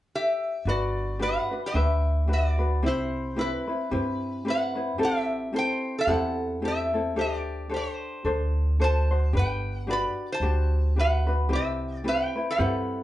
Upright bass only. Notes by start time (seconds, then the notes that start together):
0.65 G1
1.74 D2
2.83 C2
3.92 G2
5.00 A1
6.07 E2
7.16 D2
8.25 D2
9.33 G1
10.40 D2
11.50 C2
12.59 G2